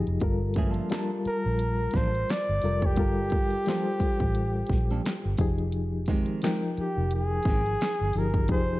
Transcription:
0.00 0.23 F3 medium
0.00 0.23 D#4 medium
0.00 0.23 G4 medium
0.00 0.23 G#4 medium
0.07 0.19 F1 medium
0.07 closed hi-hat soft
0.20 0.80 G1 loud
0.20 0.80 G3 medium
0.20 0.80 F4 medium
0.20 0.81 A4 medium
0.20 0.81 A#4 medium
0.20 kick medium
0.20 closed hi-hat medium
0.54 0.69 E3 medium
0.54 0.70 A3 medium
0.54 0.71 C#4 medium
0.54 kick medium
0.54 closed hi-hat medium
0.58 0.71 G#4 medium
0.69 0.88 F3 medium
0.69 0.89 A#3 medium
0.69 0.89 D4 medium
0.69 0.89 A4 medium
0.74 closed hi-hat soft
0.90 1.09 F3 medium
0.90 2.04 G3 medium
0.90 1.09 A#3 medium
0.90 1.09 D4 medium
0.90 2.05 F4 medium
0.90 1.10 A4 medium
0.90 2.05 A#4 medium
0.90 2.05 A5 medium
0.90 snare loud
0.90 clap medium
0.90 closed hi-hat medium
1.25 1.98 A#4 medium
1.25 muted fingered electric bass stroke soft
1.25 closed hi-hat medium
1.46 1.87 A#1 medium
1.59 closed hi-hat medium
1.91 2.23 A1 medium
1.91 2.08 F3 medium
1.91 kick medium
1.91 closed hi-hat medium
1.95 2.08 A#3 medium
1.95 2.08 D4 medium
1.95 2.09 A4 medium
1.95 2.32 C5 medium
1.95 snare soft
2.15 closed hi-hat soft
2.30 2.87 D5 medium
2.30 snare loud
2.30 clap medium
2.30 closed hi-hat medium
2.49 2.61 G1 medium
2.62 2.98 F1 medium
2.62 2.92 G3 medium
2.62 2.92 F4 medium
2.62 2.93 A4 medium
2.62 2.93 A#4 medium
2.62 open hi-hat soft
2.82 5.40 G4 medium
2.82 kick medium
2.82 closed hi-hat soft
2.96 3.56 G1 medium
2.96 3.56 G3 medium
2.96 3.56 F4 medium
2.96 3.57 A4 medium
2.96 3.57 A#4 medium
2.96 kick loud
2.96 closed hi-hat medium
3.30 kick medium
3.30 closed hi-hat medium
3.50 closed hi-hat soft
3.66 3.84 F3 medium
3.66 4.81 G3 medium
3.66 3.85 A#3 medium
3.66 3.85 D4 medium
3.66 4.81 F4 medium
3.66 4.81 A4 medium
3.66 3.85 A4 medium
3.66 4.82 C5 medium
3.66 snare loud
3.66 clap medium
3.66 closed hi-hat medium
4.00 muted fingered electric bass stroke soft
4.00 kick medium
4.00 closed hi-hat medium
4.20 4.62 A1 medium
4.20 kick medium
4.35 closed hi-hat medium
4.67 4.99 A#1 medium
4.67 kick medium
4.67 closed hi-hat medium
4.71 snare soft
4.90 5.01 F3 soft
4.90 5.01 A#3 soft
4.90 5.00 D4 medium
4.90 5.00 A4 medium
4.90 closed hi-hat soft
5.06 snare loud
5.06 clap medium
5.06 closed hi-hat medium
5.25 5.37 G1 medium
5.37 6.26 F1 medium
5.37 6.26 F3 medium
5.37 6.26 D#4 medium
5.37 6.27 G4 medium
5.37 6.27 G#4 medium
5.37 kick loud
5.37 open hi-hat soft
5.58 closed hi-hat soft
5.72 closed hi-hat medium
6.06 6.40 D#3 medium
6.06 6.40 G#3 medium
6.06 6.41 C4 medium
6.06 6.41 G4 medium
6.06 kick medium
6.06 closed hi-hat medium
6.26 closed hi-hat soft
6.42 6.60 D#3 medium
6.42 7.56 F3 medium
6.42 6.61 G#3 medium
6.42 6.61 C4 medium
6.42 7.57 D#4 medium
6.42 6.61 G4 medium
6.42 7.57 A#4 medium
6.42 7.57 G5 medium
6.42 snare loud
6.42 clap medium
6.42 closed hi-hat medium
6.77 7.11 G4 medium
6.77 muted fingered electric bass stroke soft
6.77 closed hi-hat medium
6.98 7.39 F1 medium
7.11 8.20 G#4 loud
7.11 closed hi-hat medium
7.43 7.75 G#1 medium
7.43 kick medium
7.43 closed hi-hat medium
7.47 7.60 D#3 medium
7.47 7.60 G#3 medium
7.47 7.60 C4 medium
7.47 7.61 G4 medium
7.47 snare soft
7.66 closed hi-hat soft
7.81 snare loud
7.81 clap medium
7.81 closed hi-hat medium
8.01 8.13 G1 medium
8.13 8.50 G1 medium
8.13 8.44 F3 medium
8.13 8.45 D#4 medium
8.13 8.45 G4 medium
8.13 8.45 G#4 medium
8.13 open hi-hat soft
8.18 8.51 A#4 medium
8.34 kick medium
8.34 closed hi-hat soft
8.48 8.80 F1 loud
8.48 8.80 F3 medium
8.48 8.80 D#4 medium
8.48 8.80 G4 medium
8.48 8.80 G#4 medium
8.48 8.80 C5 loud
8.48 kick medium
8.48 closed hi-hat medium

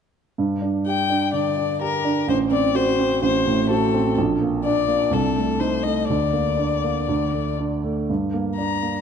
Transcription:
0.38 1.31 G2 soft
0.62 1.00 D4 soft
0.86 1.24 G4 soft
0.86 1.31 G5 soft
1.10 1.48 D4 soft
1.33 1.71 D3 soft
1.33 1.80 D5 soft
1.57 1.95 D4 soft
1.81 2.19 G4 soft
1.81 2.28 A#4 soft
2.05 2.29 D4 soft
2.28 3.20 A1 soft
2.28 2.37 C5 soft
2.51 2.89 C4 soft
2.51 2.77 D5 medium
2.75 3.13 F#4 soft
2.75 3.23 C5 medium
2.99 3.37 C4 soft
3.22 4.14 A1 soft
3.22 3.69 C5 medium
3.47 3.84 A2 soft
3.70 4.08 F#4 soft
3.70 4.16 A4 soft
3.94 4.18 C4 soft
4.17 5.10 A#1 soft
4.41 4.79 A#3 soft
4.65 5.04 D4 soft
4.65 5.14 D5 medium
4.88 5.12 A#3 soft
5.11 6.06 C2 soft
5.11 5.61 A4 soft
5.37 5.75 A3 soft
5.60 5.99 D#4 soft
5.60 5.85 C5 soft
5.83 6.09 A3 soft
5.83 6.09 D#5 soft
6.09 7.06 D2 soft
6.09 7.55 D5 soft
6.33 6.73 A#3 soft
6.57 6.98 D4 soft
6.84 7.09 A#3 soft
7.08 8.05 D2 soft
7.33 7.73 A3 soft
7.58 7.98 D4 soft
7.84 8.08 A3 soft
8.10 9.01 G2 soft
8.34 8.72 A#3 soft
8.56 8.96 D4 soft
8.56 9.01 A#5 soft
8.82 9.01 A#3 soft

